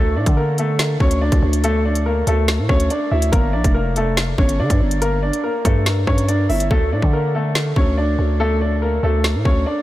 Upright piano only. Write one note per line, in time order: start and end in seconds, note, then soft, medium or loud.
0.00 0.13 A3 medium
0.00 0.12 A4 loud
0.16 0.34 D4 medium
0.16 0.34 D5 medium
0.37 0.55 A#3 medium
0.37 0.54 A#4 medium
0.59 0.76 A3 medium
0.59 0.76 A4 medium
1.00 1.18 C#4 medium
1.00 1.18 C#5 medium
1.21 1.62 D4 medium
1.21 1.61 D5 medium
1.64 1.82 A3 medium
1.64 1.81 A4 loud
1.85 2.03 D4 medium
1.85 2.02 D5 medium
2.06 2.24 A#3 medium
2.06 2.23 A#4 medium
2.27 2.45 A3 medium
2.27 2.45 A4 medium
2.69 2.87 C#4 medium
2.69 2.87 C#5 medium
2.90 3.08 D4 medium
2.90 3.08 D5 medium
3.11 3.29 E4 medium
3.11 3.29 E5 medium
3.32 3.50 A#3 medium
3.32 3.50 A#4 loud
3.53 3.71 D4 medium
3.53 3.71 D5 medium
3.74 3.93 A#3 medium
3.74 3.92 A#4 medium
3.97 4.14 A3 medium
3.97 4.14 A4 medium
4.38 4.56 C#4 medium
4.38 4.56 C#5 medium
4.60 5.00 D4 medium
4.60 4.99 D5 medium
5.02 5.20 A#3 medium
5.02 5.19 A#4 loud
5.23 5.41 D4 medium
5.23 5.40 D5 medium
5.44 5.62 A#3 medium
5.44 5.61 A#4 medium
5.65 5.83 A3 medium
5.65 5.82 A4 medium
6.07 6.25 C#4 medium
6.07 6.25 C#5 medium
6.28 6.46 D4 medium
6.28 6.46 D5 medium
6.49 6.67 E4 medium
6.49 6.67 E5 medium
6.71 6.89 A3 medium
6.71 6.88 A4 loud
6.93 7.10 D4 medium
6.93 7.10 D5 medium
7.13 7.31 A#3 medium
7.13 7.31 A#4 medium
7.35 7.52 A3 medium
7.35 7.52 A4 medium
7.76 7.94 C#4 medium
7.76 7.94 C#5 medium
7.97 8.38 D4 medium
7.97 8.37 D5 medium
8.40 8.58 A3 medium
8.40 8.57 A4 loud
8.61 8.79 D4 medium
8.61 8.78 D5 medium
8.82 9.00 A#3 medium
8.82 8.99 A#4 medium
9.03 9.21 A3 medium
9.03 9.21 A4 medium
9.45 9.63 C#4 medium
9.45 9.63 C#5 medium
9.66 9.82 D4 medium
9.66 9.82 D5 medium